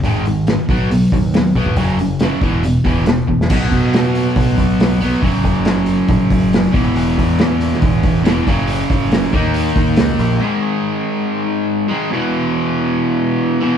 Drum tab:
CC |----------------|----------------|x---------------|----------------|
HH |o-o-o-o-o-o-o-o-|o-o-o-o-o-o-o---|--o-o-o-o-o-o-o-|o-o-o-o-o-o-o-o-|
SD |----o-------o---|----o-------o--o|----o-------o---|----o-------o---|
BD |o-----o---o---oo|o-----o---o---o-|o-o-----o-o-----|o-o-----o-o---o-|

CC |----------------|----------------|----------------|----------------|
HH |o-o-o-o-o-o-o-o-|o-o-o-o-o-o-o-o-|----------------|----------------|
SD |----o--o----o---|----o-------o---|----------------|----------------|
BD |--o-----o-o---o-|--o---o---o-----|----------------|----------------|